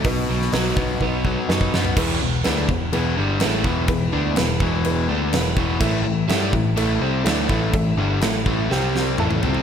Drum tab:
CC |----------------|x---x---x---x---|x---x---x---x---|x---x---x---x---|
HH |o---o-----------|----------------|----------------|----------------|
SD |---oo-------o-o-|----o-------o---|----o-------o---|----o-------o---|
T2 |----------------|----------------|----------------|----------------|
FT |---------------o|----------------|----------------|----------------|
BD |o-----o-o-o--o--|o-----o-------o-|o-----o-------o-|o-----o-------o-|

CC |x---x-----------|
HH |----------------|
SD |----o---o-o-----|
T2 |------------oo--|
FT |--------------oo|
BD |o-----o---------|